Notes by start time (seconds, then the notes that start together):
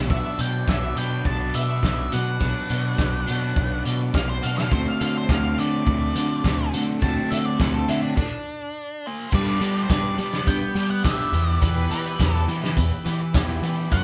Already playing: B3 D4
0.08 B1 B2 F#3 B3 D4 F#4 B4 D5 E5, kick, shaker
0.39 B2 G5, closed hi-hat, shaker
0.54 shaker
0.68 B1 E5, kick, snare, shaker
0.95 B2 F#3 B3 D4 G5, closed hi-hat, shaker
1.12 shaker
1.25 B1 A5, kick, shaker
1.54 B2 E5, closed hi-hat, shaker
1.69 shaker
1.83 B1, kick, snare, shaker
2.12 B2 F#3 B3 D4 F#4 F#5, closed hi-hat, shaker
2.26 shaker
2.40 B1 B2 F#3 B3 D4 F#4, kick, shaker
2.69 B2, closed hi-hat, shaker
2.84 shaker
2.98 B1, kick, snare, shaker
3.26 B2 F#3 B3 D4, closed hi-hat, shaker
3.42 shaker
3.56 B1, kick, shaker
3.85 B2, closed hi-hat, shaker
3.99 shaker
4.14 B1 F5, kick, snare, shaker
4.29 C5
4.42 B2 F#3 B3 D4 F#4 F5, closed hi-hat, shaker
4.58 F5, snare, shaker
4.71 D2 D3 F#3 A3 C4 F#4 A4 C5, kick, shaker
4.88 F5
5.00 D3 F5, closed hi-hat, shaker
5.15 C5, shaker
5.28 D2 F5, kick, snare, shaker
5.56 D3 F#3 A3 C4, closed hi-hat, shaker
5.60 D5
5.73 shaker
5.86 D2, kick, shaker
6.14 D3, closed hi-hat, shaker
6.30 shaker
6.44 D2, kick, snare, shaker
6.72 D3 A3 C4 F#4, closed hi-hat, shaker
6.87 shaker
6.99 D2 D3 F#3 A3 C4 A5, kick, shaker
7.04 F#4
7.15 shaker
7.30 D3 E5, closed hi-hat, shaker
7.44 D5, shaker
7.59 D2 B4, kick, snare, shaker
7.73 A4, shaker
7.88 D3 F#3 A3 C4 E4, closed hi-hat, shaker
8.03 D4, shaker
8.17 D4, kick, crash
9.06 C5 C6
9.32 G2 G3 B3 D4 G4 B4 D5 B5 D6, kick, crash, shaker
9.61 G3 G4, closed hi-hat, shaker
9.74 D4 G4, closed hi-hat
9.83 C5 C6
9.89 G2 B3 D4 G4 D5 D6, kick, snare, closed hi-hat, shaker
10.18 G3 B3 D4 G4, closed hi-hat, shaker
10.32 muted overdriven electric guitar stroke, snare, closed hi-hat
10.47 G2 B3 G5 G6, kick, closed hi-hat, shaker
10.75 G3 B3 D4 G4, closed hi-hat, shaker
10.90 F#5 F#6, muted overdriven electric guitar stroke
11.04 G2 B3 D4 G4 E5 E6, kick, snare, closed hi-hat, shaker
11.18 D4 G4, closed hi-hat
11.32 E2 E3 B3 E4 G4 E5 B5, closed hi-hat, shaker
11.46 B3 E4 G4
11.50 D5
11.60 E2 E3 B3 E4 G4 B4 B5, kick, closed hi-hat, shaker
11.77 closed hi-hat
11.91 E3 G4 B4 B5, closed hi-hat, shaker
12.04 B3 E4 G4, closed hi-hat
12.19 E2 E3 B3 E4 G4, kick, snare, closed hi-hat, shaker
12.32 A4, closed hi-hat
12.47 E3 B3 E4 G4, closed hi-hat, shaker
12.62 muted overdriven electric guitar stroke, snare, closed hi-hat
12.77 E2 B3, kick, closed hi-hat, shaker
12.91 closed hi-hat
13.05 E3 B3 E4 G4, closed hi-hat, shaker
13.21 muted overdriven electric guitar stroke
13.34 E2 E3 B3 E4 G4, kick, snare, closed hi-hat, shaker
13.49 B3 E4 G4, closed hi-hat
13.62 E3 B3 E4 G4, closed hi-hat, shaker
13.77 B3 E4 G4
13.91 F#2 F#3 B3 D4 F#4 D5 F#5 F#6, kick, closed hi-hat, shaker